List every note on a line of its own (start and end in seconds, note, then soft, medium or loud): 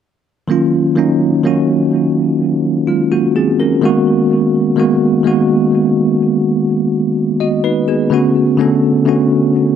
0.48 0.93 D#3 medium
0.48 0.94 F#3 medium
0.48 0.94 A#3 medium
0.48 0.94 C#4 medium
0.48 0.95 F4 medium
0.95 1.41 D#3 medium
0.95 1.41 F#3 medium
0.95 1.41 A#3 medium
0.95 1.42 C#4 medium
0.95 1.42 D#4 medium
1.43 3.22 D#3 medium
1.43 3.22 F#3 medium
1.43 2.88 A#3 medium
1.43 2.88 C#4 medium
1.43 2.89 F#4 medium
2.87 3.11 G#3 medium
2.87 3.10 F4 medium
3.12 3.34 A#3 medium
3.12 3.34 F#4 medium
3.36 3.58 C4 medium
3.36 3.58 G#4 medium
3.60 4.05 C#4 medium
3.60 4.05 A#4 medium
3.81 4.71 D#3 medium
3.81 4.71 G#3 medium
3.81 4.72 A#3 medium
3.81 4.72 B3 medium
3.85 4.73 F#4 medium
4.76 5.21 D#3 medium
4.76 5.22 G#3 medium
4.76 5.22 A#3 medium
4.76 5.23 B3 medium
4.76 5.23 F#4 medium
5.24 7.02 D#3 medium
5.24 7.03 G#3 medium
5.24 6.68 A#3 medium
5.24 6.69 B3 medium
5.24 6.69 F#4 medium
7.40 7.63 F#4 medium
7.40 7.63 D#5 medium
7.64 7.87 D#4 medium
7.64 7.86 B4 medium
7.88 8.11 B3 medium
7.88 8.33 G#4 medium
8.10 8.55 D3 medium
8.10 8.56 A3 medium
8.10 8.56 B3 medium
8.10 8.57 C#4 medium
8.10 8.57 F#4 medium
8.57 9.03 D3 medium
8.57 9.03 A3 medium
8.57 9.04 B3 medium
8.57 9.04 C#4 medium
8.57 9.04 A4 medium
9.05 9.76 D3 medium
9.05 9.76 A3 medium
9.05 9.76 B3 medium
9.05 9.76 C#4 medium
9.05 9.76 F#4 medium